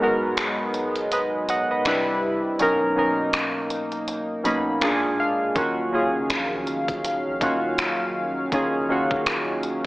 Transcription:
Already playing: analog synth pad F#3 G#3 B3 D#4, synth keys B3 F#4 A#4
0.00 synth keys G#2 G#3 B3 F#4 A#4
0.37 finger snap, closed hi-hat
0.74 closed hi-hat
0.96 closed hi-hat
1.12 synth keys B4 D#5, closed hi-hat
1.49 synth keys D#5 F#5, closed hi-hat
1.71 synth keys B4 D#5
1.85 synth keys C3 G3 D4 E4 B4, analog synth pad C3 G3 E4, finger snap, closed hi-hat
2.59 synth keys B2 F#3 C#4 D#4 A#4, analog synth pad A#3 D#4, closed hi-hat
2.96 synth keys B2 F#3 C#4 D#4 A#4
3.33 finger snap, closed hi-hat
3.70 closed hi-hat
3.92 closed hi-hat
4.08 closed hi-hat
4.44 synth keys B2 F#3 A#3 C#4 D#4 B5, closed hi-hat
4.81 synth keys A#2 A#3 D4 F4 G#4 G#5, analog synth pad G#3 D4, finger snap, closed hi-hat
5.20 synth keys F5
5.55 808-style bass D#1, synth keys D#3 A#3 C#4 F4 F#4, analog synth pad D#3 F#3 C#4 F5, kick, closed hi-hat
5.92 synth keys D#3 A#3 C#4 F4 G#4
6.14 808-style bass F#1
6.30 808-style bass A#1, finger snap, closed hi-hat
6.67 808-style bass C#1, closed hi-hat
6.88 808-style bass D#1, kick, closed hi-hat
7.05 closed hi-hat
7.26 808-style bass A#1
7.40 808-style bass D#1, synth keys D#3 A#3 C#4 F4 F#4, kick, closed hi-hat
7.78 finger snap, closed hi-hat
8.52 808-style bass D#1, synth keys D#3 A#3 C#4 F4 G#4, kick, closed hi-hat
8.89 synth keys D#3 A#3 C#4 F4 F#4
9.11 808-style bass D#1, kick
9.26 finger snap, closed hi-hat
9.63 closed hi-hat

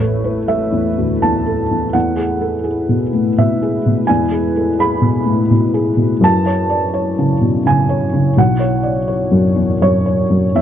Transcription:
Already playing: felt piano A1 C#5, ambient pad A3 E4 B4
0.00 felt piano A4
0.24 felt piano B4
0.48 felt piano A4 E5
0.72 felt piano E2
0.98 felt piano D2
1.22 felt piano E2 A5
1.46 felt piano A4
1.71 felt piano E2
1.93 felt piano E2 F#5, ambient pad G#3 E4 B4
2.16 felt piano G#4
2.41 felt piano A4
2.64 felt piano G#4
2.89 felt piano B2
3.13 felt piano A2
3.38 felt piano B2 E5
3.62 felt piano G#4
3.86 felt piano B2
4.07 felt piano E2 G#5
4.31 felt piano G#4
4.56 felt piano A4
4.79 felt piano G#4 B5
5.02 felt piano B2
5.26 felt piano A2
5.51 felt piano B2
5.74 felt piano G#4
5.97 felt piano B2
6.21 felt piano F#2 A5, ambient pad F#3 E4 C#5
6.46 felt piano C#5
6.70 felt piano D5
6.94 felt piano C#5
7.19 felt piano C#3
7.41 felt piano B2
7.66 felt piano C#3 G#5
7.89 felt piano C#5
8.13 felt piano C#3
8.37 felt piano B1 F#5, ambient pad D4
8.59 felt piano C#5
8.83 felt piano D5
9.08 felt piano C#5
9.31 felt piano F#2
9.56 felt piano E2
9.81 felt piano F#2 C#5
10.06 felt piano C#5
10.30 felt piano F#2
10.55 felt piano E2 E5, ambient pad G#3 E4 B4

